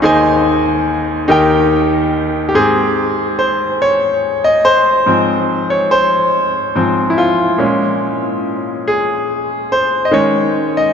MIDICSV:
0, 0, Header, 1, 2, 480
1, 0, Start_track
1, 0, Key_signature, -4, "major"
1, 0, Tempo, 841633
1, 18, Time_signature, 6, 3, 24, 8
1, 6234, End_track
2, 0, Start_track
2, 0, Title_t, "Grand piano"
2, 0, Program_c, 0, 0
2, 0, Control_c, 0, 64, 127
2, 12, Note_on_c, 0, 63, 74
2, 18, Note_on_c, 0, 68, 74
2, 20, Note_on_c, 0, 39, 62
2, 23, Note_on_c, 0, 72, 75
2, 25, Note_on_c, 0, 51, 64
2, 26, Control_c, 0, 64, 0
2, 29, Note_on_c, 0, 75, 76
2, 31, Note_on_c, 0, 80, 94
2, 116, Control_c, 0, 64, 127
2, 517, Note_off_c, 0, 63, 0
2, 521, Note_off_c, 0, 68, 0
2, 523, Note_off_c, 0, 72, 0
2, 526, Note_off_c, 0, 75, 0
2, 527, Note_off_c, 0, 80, 0
2, 717, Note_off_c, 0, 39, 0
2, 719, Note_off_c, 0, 51, 0
2, 729, Note_on_c, 0, 63, 73
2, 732, Note_on_c, 0, 67, 65
2, 738, Note_on_c, 0, 51, 68
2, 740, Note_on_c, 0, 39, 61
2, 740, Note_on_c, 0, 70, 61
2, 743, Note_on_c, 0, 75, 65
2, 745, Control_c, 0, 64, 0
2, 749, Note_on_c, 0, 79, 83
2, 843, Control_c, 0, 64, 127
2, 1236, Note_off_c, 0, 63, 0
2, 1237, Note_off_c, 0, 67, 0
2, 1242, Note_off_c, 0, 70, 0
2, 1243, Note_off_c, 0, 75, 0
2, 1246, Note_off_c, 0, 79, 0
2, 1418, Note_on_c, 0, 67, 60
2, 1435, Note_off_c, 0, 51, 0
2, 1436, Note_off_c, 0, 39, 0
2, 1447, Note_off_c, 0, 67, 0
2, 1451, Note_on_c, 0, 44, 43
2, 1455, Note_on_c, 0, 67, 40
2, 1455, Note_on_c, 0, 68, 79
2, 1459, Note_on_c, 0, 60, 51
2, 1465, Control_c, 0, 64, 0
2, 1575, Control_c, 0, 64, 127
2, 1914, Note_off_c, 0, 68, 0
2, 1932, Note_on_c, 0, 72, 75
2, 1987, Note_off_c, 0, 72, 0
2, 2152, Note_off_c, 0, 44, 0
2, 2154, Note_off_c, 0, 67, 0
2, 2156, Note_off_c, 0, 60, 0
2, 2177, Note_on_c, 0, 73, 85
2, 2535, Note_on_c, 0, 75, 81
2, 2549, Note_off_c, 0, 73, 0
2, 2651, Note_on_c, 0, 72, 102
2, 2660, Note_off_c, 0, 75, 0
2, 2887, Note_on_c, 0, 44, 49
2, 2890, Note_on_c, 0, 53, 42
2, 2894, Note_on_c, 0, 60, 51
2, 2904, Control_c, 0, 64, 0
2, 3014, Control_c, 0, 64, 127
2, 3232, Note_off_c, 0, 72, 0
2, 3252, Note_on_c, 0, 73, 73
2, 3372, Note_on_c, 0, 72, 85
2, 3379, Note_off_c, 0, 73, 0
2, 3590, Note_off_c, 0, 44, 0
2, 3592, Note_off_c, 0, 53, 0
2, 3594, Note_off_c, 0, 60, 0
2, 3851, Note_on_c, 0, 44, 46
2, 3854, Note_on_c, 0, 53, 42
2, 3856, Note_on_c, 0, 60, 49
2, 4049, Note_on_c, 0, 64, 51
2, 4072, Note_off_c, 0, 44, 0
2, 4074, Note_off_c, 0, 53, 0
2, 4075, Note_off_c, 0, 60, 0
2, 4076, Note_off_c, 0, 72, 0
2, 4094, Note_off_c, 0, 64, 0
2, 4094, Note_on_c, 0, 65, 67
2, 4321, Note_on_c, 0, 46, 47
2, 4325, Note_on_c, 0, 56, 43
2, 4331, Note_on_c, 0, 61, 50
2, 4347, Control_c, 0, 64, 0
2, 4450, Control_c, 0, 64, 127
2, 4553, Note_off_c, 0, 65, 0
2, 5062, Note_on_c, 0, 68, 67
2, 5544, Note_on_c, 0, 72, 78
2, 5555, Note_off_c, 0, 68, 0
2, 5733, Note_on_c, 0, 75, 64
2, 5747, Note_off_c, 0, 46, 0
2, 5748, Note_off_c, 0, 72, 0
2, 5749, Note_off_c, 0, 56, 0
2, 5752, Note_off_c, 0, 61, 0
2, 5769, Note_on_c, 0, 51, 47
2, 5769, Note_on_c, 0, 56, 48
2, 5774, Note_on_c, 0, 61, 52
2, 5776, Note_off_c, 0, 75, 0
2, 5781, Note_on_c, 0, 73, 80
2, 5787, Control_c, 0, 64, 0
2, 5876, Control_c, 0, 64, 127
2, 6092, Note_off_c, 0, 51, 0
2, 6093, Note_off_c, 0, 56, 0
2, 6096, Note_off_c, 0, 61, 0
2, 6117, Note_off_c, 0, 73, 0
2, 6143, Note_on_c, 0, 75, 72
2, 6234, Note_off_c, 0, 75, 0
2, 6234, End_track
0, 0, End_of_file